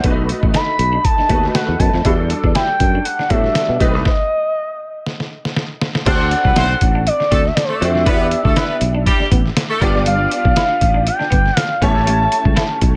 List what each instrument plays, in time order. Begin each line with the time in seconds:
0.04 fretless electric bass B1, grand piano A3 D4 F#4 B4, clean electric guitar B3, kick, closed hi-hat
0.10 grand piano D#4
0.29 muted clean electric guitar stroke, closed hi-hat
0.43 fretless electric bass A1, clean electric guitar A3, kick
0.54 clean electric guitar D#4, analog synth lead B5, snare, closed hi-hat
0.79 fretless electric bass B1, muted clean electric guitar stroke, closed hi-hat
0.93 clean electric guitar D4
1.04 analog synth lead A5, muted clean electric guitar stroke, kick, closed hi-hat
1.18 clean electric guitar D4, snare
1.29 fretless electric bass D#2, grand piano A3 D#4 F#4 B4, clean electric guitar B3, kick, closed hi-hat
1.44 snare
1.54 analog synth lead F#5, snare, closed hi-hat
1.68 fretless electric bass E2
1.79 fretless electric bass F#2, clean electric guitar B3, analog synth lead A5, kick, closed hi-hat
1.93 fretless electric bass F2, clean electric guitar A3, snare
2.04 fretless electric bass E2, grand piano G3 D4 F#4 A4, clean electric guitar E4, kick, closed hi-hat
2.30 muted clean electric guitar stroke, closed hi-hat
2.44 fretless electric bass E2, clean electric guitar D4, kick
2.55 clean electric guitar E4, analog synth lead G5, snare, closed hi-hat
2.80 fretless electric bass F#2, muted clean electric guitar stroke, kick, closed hi-hat
2.95 clean electric guitar D4
3.04 analog synth lead F#5, muted clean electric guitar stroke, closed hi-hat
3.19 clean electric guitar D4, snare
3.29 fretless electric bass A2, grand piano G3 D4 F#4 A4, clean electric guitar B3, analog synth lead E5, kick, closed hi-hat
3.44 snare
3.55 muted clean electric guitar stroke, snare, closed hi-hat
3.69 fretless electric bass B2
3.79 fretless electric bass B1, grand piano A3 C4 D#4 B4, clean electric guitar B3, analog synth lead D#5, kick, closed hi-hat
3.94 fretless electric bass C2, clean electric guitar A3, snare
4.05 analog synth lead D#5, kick, snare
5.06 snare
5.20 snare
5.45 snare
5.56 snare
5.81 snare
5.95 snare
6.05 fretless electric bass D2, grand piano C4 D4 F#4 A4 D5, horn section C4 C5, clean electric guitar D4, analog synth lead F#5, kick, closed hi-hat, crash
6.31 analog synth lead F#5, muted clean electric guitar stroke, closed hi-hat
6.45 fretless electric bass C2, horn section B3 B4, clean electric guitar C4, kick
6.56 fretless electric bass B1, horn section C4 C5, clean electric guitar E4, snare, closed hi-hat
6.81 fretless electric bass A1, muted clean electric guitar stroke, kick, closed hi-hat
6.95 clean electric guitar D4
7.07 analog synth lead D5, muted clean electric guitar stroke, closed hi-hat
7.20 clean electric guitar D4, snare
7.31 fretless electric bass D2, horn section A3 A4, clean electric guitar C4, kick, closed hi-hat
7.45 analog synth lead E5, snare
7.55 analog synth lead D5, muted clean electric guitar stroke, snare, closed hi-hat
7.64 analog synth lead C5
7.69 horn section A3 A4
7.74 analog synth lead D5
7.80 fretless electric bass F2, grand piano C4 D4 F#4 A4 D5, clean electric guitar C4, analog synth lead E5, closed hi-hat
7.95 clean electric guitar A3, snare
8.05 fretless electric bass E2, grand piano B3 D4 E4 F#4 D5, horn section B3 B4, clean electric guitar E4, kick, closed hi-hat
8.12 grand piano G4
8.31 muted clean electric guitar stroke, closed hi-hat
8.45 fretless electric bass D2, horn section A3 A4, clean electric guitar D4, kick
8.56 horn section B3 B4, clean electric guitar E4, snare, closed hi-hat
8.81 fretless electric bass B1, muted clean electric guitar stroke, closed hi-hat
8.95 clean electric guitar D4
9.06 horn section G3 G4, muted clean electric guitar stroke, kick, closed hi-hat
9.20 clean electric guitar D4, snare
9.31 fretless electric bass A1, clean electric guitar B3, kick, closed hi-hat
9.46 snare
9.57 muted clean electric guitar stroke, snare, closed hi-hat
9.70 horn section A3 A4
9.81 fretless electric bass G1, grand piano B3 D4 F4 G4 D5, clean electric guitar B3, kick, closed hi-hat
9.95 clean electric guitar G3, snare
10.06 clean electric guitar G3, analog synth lead F5, closed hi-hat
10.31 analog synth lead F5, muted clean electric guitar stroke, closed hi-hat
10.45 fretless electric bass B1, clean electric guitar D4, kick
10.56 clean electric guitar E4, snare, closed hi-hat
10.81 fretless electric bass A1, muted clean electric guitar stroke, kick, closed hi-hat
10.94 clean electric guitar D4
11.07 analog synth lead G5, muted clean electric guitar stroke, closed hi-hat
11.19 clean electric guitar D4, snare
11.30 fretless electric bass G1, clean electric guitar B3, kick, closed hi-hat
11.46 snare
11.57 analog synth lead F5, muted clean electric guitar stroke, snare, closed hi-hat
11.81 fretless electric bass A1, grand piano A3 C#4 E4 G4 C#5, clean electric guitar B3, analog synth lead A5, kick, closed hi-hat
11.95 clean electric guitar A3, snare
12.07 clean electric guitar A3, closed hi-hat
12.32 muted clean electric guitar stroke, closed hi-hat
12.45 fretless electric bass C#2, clean electric guitar G3, kick
12.56 clean electric guitar E4, snare, closed hi-hat
12.81 fretless electric bass B1, muted clean electric guitar stroke, kick, closed hi-hat